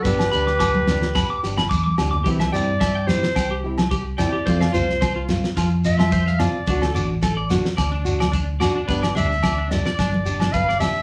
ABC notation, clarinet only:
X:1
M:4/4
L:1/8
Q:"Swing 16ths" 1/4=109
K:C
V:1 name="Clarinet"
B6 z2 | z d2 c2 z2 d- | d c2 z2 e2 d- | d z6 z |
z e2 d3 f e |]